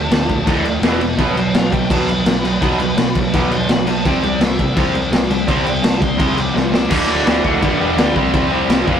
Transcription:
Already playing: D2 A2 D3 A3 F#4 A5
0.09 D1 D2 A2, snare, crash
0.29 D1 D2 A2, kick, crash
0.47 D1 D2 A2 D3, kick, crash
0.65 D2 A2, crash
0.80 E1 E2 B2 E3, snare, crash
0.85 E3
1.01 E2 B2, crash
1.17 B1 B2 F#3 B3 D4 F#4 B4, kick, crash
1.34 B1 B2 F#3 C5, crash
1.53 B1 B2 F#3 F5, snare, crash
1.72 B1 B2 F#3 G5, kick, crash
1.90 B1 B2 F#3 B3 A5, kick, crash
2.08 B2 F#3 B5, crash
2.25 B1 B2 F#3, snare, crash
2.42 B2 F#3 B3 D4 F#4 B4, crash
2.60 B1 B2 F#3 B3 D4 F#4 B4, kick, crash
2.77 B1 B2 F#3, crash
2.96 B1 B2 F#3, snare, crash
3.15 B1 B2 F#3, kick, crash
3.33 B1 B2 F#3 B3 D6, kick, crash
3.52 B2 F#3 C6, crash
3.68 B1 B2 F#3 B5, snare, crash
3.85 B2 F#3 B3 D4 F#4 B4 A5, crash
4.04 C2 C3 G3 C4 E4 G4 C5 G5, kick, crash
4.22 C2 C3 G3 D5, crash
4.40 C2 C3 G3 E5, snare, crash
4.59 C2 C3 G3, kick, crash
4.75 C2 C3 G3 C4, kick, crash
4.93 C3 G3, crash
5.11 C2 C3 G3, snare, crash
5.30 C3 G3 C4 E4 G4 C5, crash
5.47 C2 C3 G3 C4 E4 G4 C5 D5, kick, crash
5.64 C2 C3 G3 G5, crash
5.82 C2 C3 G3 A5, snare, crash
6.00 C2 C3 G3 C6, kick, crash
6.18 C2 C3 G3 C4, kick, crash
6.37 C3 G3 D6, crash
6.53 C2 C3 G3 D4 D5 C6, snare
6.72 C3 G3 C4 E4 G4 C5 E5 D6, snare
6.90 D1 D2 A2 D3 A3 D4 D5, kick, crash
6.94 F#4
7.07 D1 D2 A2 D3 D4 D5
7.25 D1 D2 A2 D3, snare, crash
7.43 D1 D2 A2 D3 F#4 F#5, kick
7.61 G1 G2 D3 G3 B3 D4 G4, kick, crash
7.79 E1 G2 D3 G3 G4 G5
7.96 D2 G2 D3 G3, snare, crash
8.14 C2 C3 G3 C4 E4 G4 C5, kick
8.32 C2 C3 G3 C4 E4 E5, kick, crash
8.51 C3 G3 C4 E4 E5
8.68 C2 C3 G3 C4, snare, crash
8.85 F1 F2 C3 F3 A3 C4, kick
8.90 F4

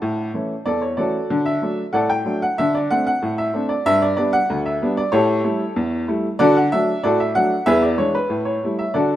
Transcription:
Already playing: A4 D5 F#5
0.02 A2
0.34 E3 A3 C#4
0.66 E2 A4 D5
0.82 C#5
0.97 E3 A3 C#4 F#4 A4 D5
1.30 D3
1.46 E5
1.62 F#3 A3 D4
1.93 A2 A4 D5 F#5
2.10 G5
2.25 F#3 A3 D4
2.42 F#5
2.58 D3 E5
2.75 D5
2.91 A3 C4 D4 F#5
3.07 F#5
3.22 A2
3.38 E5
3.54 A3 C4 D4
3.69 D5
3.86 G2 E5
4.02 D5
4.17 G3 B3 D4 D5
4.33 F#5
4.50 D2
4.66 E5
4.82 G3 B3 D4
4.97 D5
5.12 A2 G4 A4 C#5
5.44 G3 A3 E4
5.76 E2
6.08 G3 A3 E4
6.39 D3 F#4 A4 D5
6.57 F#5
6.72 F#3 A3 D4 E5
7.03 A2 F#4 A4 D5
7.20 E5
7.35 F#3 A3 D4 F#5
7.66 E2 G#4 B4 E5
7.82 D5
7.98 E3 G#3 D4 C#5
8.15 B4
8.29 A2
8.45 C#5
8.64 G3 A3 E4
8.79 E5
8.94 D3 F#4 A4 D5

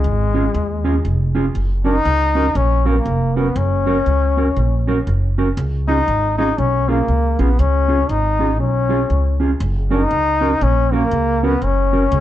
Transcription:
Already playing: G#3
0.04 G#1
0.34 C#4 F4 G#4
0.54 D#2, muted clean electric guitar stroke
0.84 C#4 F4 G#4
1.05 F1
1.35 C#4 F4 G#4
1.55 F#1
1.84 C#4 D#4 F#4 A#4
2.05 C#2
2.35 C#4 F#4 A#4
2.55 A#1 C#4, muted clean electric guitar stroke
2.85 A#3 C#4 F#4 A#4
2.91 B3
2.98 A#3
3.05 F1, muted clean electric guitar stroke
3.36 B3 C#4 F#4 A#4
3.56 F#1 C#4
3.86 C#4 F#4 A#4
4.06 C#2
4.37 C#4 F#4 A#4
4.57 A#1, muted clean electric guitar stroke
4.87 C#4 F#4 A#4
5.07 F#1, muted clean electric guitar stroke
5.38 C#4 F#4 A#4
5.57 C#2
5.88 C#4 D#4 F4 G#4
6.08 G#1
6.38 C#4 D#4 F4 G#4
6.58 B1 C#4, muted clean electric guitar stroke
6.88 A#3 C#4 F4 G#4
7.08 C#2, muted clean electric guitar stroke
7.39 A#1 B3 C#4 F4 G#4
7.59 C#2 C#4
7.88 C#4 F4 G#4
8.09 G#1 D#4
8.39 C#4 F4 G#4
8.59 B1 C#4, muted clean electric guitar stroke
8.89 C#4 F4 G#4
9.09 C#2, muted clean electric guitar stroke
9.40 C#4 F4 G#4
9.60 F#1
9.91 C#4 D#4 F#4 A#4
10.11 C#2
10.41 C#4 F#4 A#4
10.61 A#1 C#4, muted clean electric guitar stroke
10.92 A#3 C#4 F#4 A#4
11.11 C#2, muted clean electric guitar stroke
11.43 B3 C#4 F#4 A#4
11.62 F#1 C#4
11.93 C#4 F#4 A#4
12.12 C#2

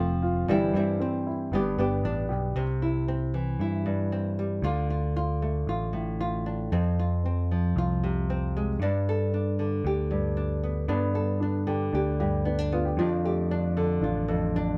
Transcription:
Already playing: F1 F2 F3 A3 C4 F4
0.23 F4
0.48 G1 G2 E3 G3 C4 E4 G4
0.74 G2 G3 C4 E4
1.00 C4
1.27 E4
1.52 G1 G2 B3 D4 G4
1.78 G1 B3 D4 G4
2.04 A1 D4
2.29 B1 G4
2.56 C2 C3 C4
2.82 E4
3.08 C4
3.34 E3
3.60 G2 E4
3.86 G2
4.12 C4
4.39 G3
4.62 D2 D3 F4
4.90 F4
5.17 F4
5.42 A3
5.67 A1 F4
5.93 A2
6.21 F4
6.46 D4
6.72 F2 C4
6.99 F4
7.26 C4
7.51 F3
7.76 C2 F4
8.04 C3
8.30 C4
8.57 G#3
8.80 G2 D4
9.09 A4
9.34 D4
9.59 D3
9.85 D2 G4
10.11 G2
10.37 D4
10.63 B3
10.88 G2 B3 D4
11.14 B3 A4
11.40 D4
11.67 D3 G4
11.93 D2 D4 G4
12.20 G2 G4
12.45 B3 D4
12.59 D4
12.72 B3 F4
12.85 G4
12.97 F2 F3 D4
13.24 A3 G4
13.51 D4
13.76 D3 A4
14.02 A1 D4 F4
14.28 F2 A4
14.55 D4

